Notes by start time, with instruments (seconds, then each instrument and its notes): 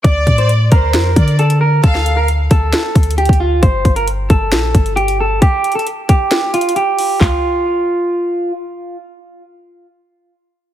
0.04 808-style bass D2, clean electric guitar D5, violin section D5, kick, closed hi-hat
0.27 808-style bass A2, kick, closed hi-hat
0.38 clean electric guitar C5, closed hi-hat
0.49 closed hi-hat
0.72 808-style bass D2, clean electric guitar A#4, violin section C5, kick, closed hi-hat
0.94 808-style bass F2, snare, closed hi-hat
1.16 808-style bass D3, violin section D5, kick, closed hi-hat
1.28 closed hi-hat
1.39 clean electric guitar A4, closed hi-hat
1.50 closed hi-hat
1.61 clean electric guitar A#4
1.84 808-style bass D2, clean electric guitar A4, violin section F5, kick, closed hi-hat
1.95 snare
2.06 closed hi-hat
2.17 clean electric guitar A#4
2.28 closed hi-hat
2.51 808-style bass D2, clean electric guitar A4, kick, closed hi-hat
2.73 snare, closed hi-hat
2.95 808-style bass D2, kick, closed hi-hat
3.03 closed hi-hat
3.11 closed hi-hat
3.18 clean electric guitar G4, closed hi-hat
3.25 808-style bass D2, kick, closed hi-hat
3.33 closed hi-hat
3.40 clean electric guitar F4
3.63 808-style bass G1, clean electric guitar C5, kick, closed hi-hat
3.85 808-style bass G1, kick, closed hi-hat
3.96 clean electric guitar A#4, closed hi-hat
4.08 closed hi-hat
4.30 808-style bass G1, clean electric guitar A4, kick, closed hi-hat
4.52 808-style bass A#1, snare, closed hi-hat
4.75 808-style bass G1, kick, closed hi-hat
4.86 closed hi-hat
4.96 clean electric guitar G4, closed hi-hat
5.08 closed hi-hat
5.20 clean electric guitar A4
5.42 clean electric guitar G4, kick, closed hi-hat
5.64 closed hi-hat
5.72 clean electric guitar A4, closed hi-hat
5.79 closed hi-hat
5.87 closed hi-hat
6.09 clean electric guitar G4, kick, closed hi-hat
6.31 snare, closed hi-hat
6.54 clean electric guitar F4, closed hi-hat
6.61 closed hi-hat
6.69 closed hi-hat
6.76 clean electric guitar G4, closed hi-hat
6.99 open hi-hat
7.21 clean electric guitar F4, kick, clap, floor tom